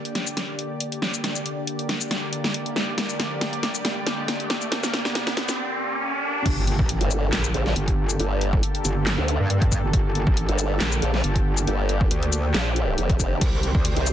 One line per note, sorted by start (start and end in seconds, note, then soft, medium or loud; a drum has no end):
0.00 6.42 D3 medium
0.00 6.42 A#3 medium
0.00 6.42 G4 medium
0.00 6.42 D5 medium
0.00 riser medium
0.05 closed hi-hat soft
0.15 snare soft
0.15 closed hi-hat soft
0.27 shaker medium
0.37 snare medium
0.37 closed hi-hat medium
0.59 closed hi-hat medium
0.80 closed hi-hat medium
0.92 closed hi-hat soft
1.02 snare medium
1.14 shaker soft
1.24 snare medium
1.24 closed hi-hat medium
1.36 shaker medium
1.46 closed hi-hat soft
1.67 closed hi-hat medium
1.79 closed hi-hat soft
1.89 snare medium
1.89 closed hi-hat soft
2.01 shaker medium
2.11 snare medium
2.11 closed hi-hat medium
2.33 closed hi-hat medium
2.44 snare medium
2.54 closed hi-hat medium
2.66 closed hi-hat soft
2.76 snare medium
2.98 snare medium
2.98 closed hi-hat medium
3.09 shaker medium
3.20 snare medium
3.20 closed hi-hat medium
3.41 snare medium
3.41 closed hi-hat medium
3.53 closed hi-hat soft
3.63 snare medium
3.63 closed hi-hat soft
3.75 shaker medium
3.85 snare medium
3.85 closed hi-hat medium
4.07 snare medium
4.07 closed hi-hat medium
4.28 snare medium
4.28 closed hi-hat medium
4.40 closed hi-hat soft
4.50 snare medium
4.62 shaker medium
4.72 snare medium
4.72 closed hi-hat medium
4.83 snare medium
4.83 shaker medium
4.94 snare medium
4.94 closed hi-hat soft
5.05 snare medium
5.15 snare loud
5.15 closed hi-hat medium
5.27 snare medium
5.27 closed hi-hat soft
5.37 snare loud
5.37 closed hi-hat soft
5.49 snare medium
5.49 shaker medium
6.46 6.77 G1 loud
6.46 13.37 D3 medium
6.46 13.37 A#3 medium
6.46 14.13 G4 medium
6.46 13.37 A4 medium
6.46 kick loud
6.46 closed hi-hat medium
6.46 crash loud
6.46 impact medium
6.67 closed hi-hat medium
6.79 6.99 A1 loud
6.79 kick loud
6.89 closed hi-hat medium
7.01 7.31 G1 loud
7.01 closed hi-hat soft
7.11 closed hi-hat medium
7.11 shaker medium
7.33 7.53 A#1 loud
7.33 snare loud
7.33 clap medium
7.33 closed hi-hat medium
7.44 shaker medium
7.54 7.74 A#1 loud
7.54 closed hi-hat medium
7.66 snare soft
7.76 8.18 G1 loud
7.76 closed hi-hat medium
7.88 kick medium
7.88 closed hi-hat soft
8.09 shaker medium
8.20 8.61 G1 loud
8.20 closed hi-hat medium
8.41 closed hi-hat medium
8.53 kick loud
8.63 closed hi-hat medium
8.75 closed hi-hat soft
8.85 9.16 G1 loud
8.85 closed hi-hat medium
8.85 shaker medium
9.07 snare loud
9.07 clap medium
9.07 closed hi-hat medium
9.18 9.38 D2 loud
9.28 closed hi-hat medium
9.40 9.82 G2 loud
9.50 closed hi-hat medium
9.62 kick loud
9.62 closed hi-hat soft
9.72 kick medium
9.72 shaker medium
9.83 9.92 G1 loud
9.93 10.25 G1 loud
9.93 kick loud
9.93 closed hi-hat medium
10.15 closed hi-hat medium
10.27 10.47 A1 loud
10.27 kick loud
10.37 closed hi-hat medium
10.49 10.79 G1 loud
10.49 closed hi-hat soft
10.59 closed hi-hat medium
10.59 shaker medium
10.80 11.01 A#1 loud
10.80 snare loud
10.80 clap medium
10.80 closed hi-hat medium
10.92 shaker medium
11.02 11.22 A#1 loud
11.02 closed hi-hat medium
11.14 snare soft
11.24 11.66 G1 loud
11.24 closed hi-hat medium
11.36 kick medium
11.36 closed hi-hat soft
11.57 shaker medium
11.67 12.09 G1 loud
11.67 closed hi-hat medium
11.89 closed hi-hat medium
12.01 kick loud
12.11 12.53 D2 loud
12.11 closed hi-hat medium
12.23 closed hi-hat soft
12.33 closed hi-hat soft
12.33 shaker medium
12.54 12.96 A#1 loud
12.54 snare loud
12.54 clap medium
12.54 closed hi-hat medium
12.76 closed hi-hat medium
12.98 13.40 F1 loud
12.98 closed hi-hat medium
13.09 kick loud
13.09 closed hi-hat soft
13.20 kick medium
13.20 shaker medium
13.41 13.73 C2 loud
13.41 14.13 D#3 medium
13.41 14.13 C4 medium
13.41 14.13 C5 medium
13.41 kick loud
13.41 closed hi-hat medium
13.41 crash medium
13.63 closed hi-hat medium
13.75 13.95 D2 loud
13.75 kick loud
13.85 closed hi-hat medium
13.85 crash soft
13.96 14.13 C2 loud
13.96 closed hi-hat soft
14.07 closed hi-hat soft
14.07 shaker medium